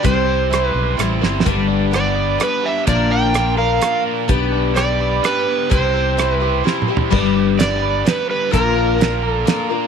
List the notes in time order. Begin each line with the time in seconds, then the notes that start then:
Already playing: G4
0.03 C2 C3 G3 C4 E4 C5, kick, closed hi-hat
0.27 C4
0.50 G3 C4 E4 C5, cross-stick, closed hi-hat
0.66 B4
0.73 B1 C5
0.97 A1 G3 C4 E4 C5, cross-stick, closed hi-hat
1.21 G1 G3 C4 E4 C5, snare
1.40 snare
1.45 G1 G2 D3 G3 B3 D4 B4, kick, closed hi-hat
1.68 D4
1.91 G3 B3 D4 B4, cross-stick, closed hi-hat
1.96 D5
2.15 B4
2.38 G3 B3 D4 B4, cross-stick, closed hi-hat
2.43 B4
2.63 G3 E5
2.87 A#1 A#2 D3 F3 A#3 D4 A#4 D5, kick, closed hi-hat
3.10 D4 G5
3.33 F3 A#3 D4 F4 A#4, cross-stick, closed hi-hat
3.57 F3 A#3 D4 A#4 F5
3.81 F3 A#3 D4 F4 A#4, cross-stick, closed hi-hat
4.05 A#3
4.28 B1 B3 D4 G4 B4, kick, closed hi-hat
4.52 D4
4.74 B3 D4 G4 B4 D5, cross-stick, closed hi-hat
5.00 B4
5.23 B3 D4 G4 B4, cross-stick, closed hi-hat
5.48 B3
5.69 C2 C3 C4 E4 G4 C5, kick, closed hi-hat
5.94 C4
6.17 C4 E4 G4 C5, cross-stick, closed hi-hat
6.33 B4
6.40 E4 G4 C5
6.64 C4 E4 G4 C5, snare
6.82 mid tom
6.88 G3 E4 G4 C5
6.97 floor tom
7.10 G1 G2 G3 B3 D4 G4 B4, kick, crash
7.35 D4
7.58 B3 D4 G4 B4 D5, snare, closed hi-hat
7.82 B4
8.05 B3 D4 G4 B4, snare, closed hi-hat
8.29 G3 B4
8.51 A#1 A#2 F3 A#3 D4 F4 A#4, kick, closed hi-hat
8.76 D4
8.98 A#3 D4 F4 A#4, snare, closed hi-hat
9.23 A#4
9.28 A4
9.45 A#3 D4 F4 A#4, snare, closed hi-hat
9.69 A#3 D4 F4 A#4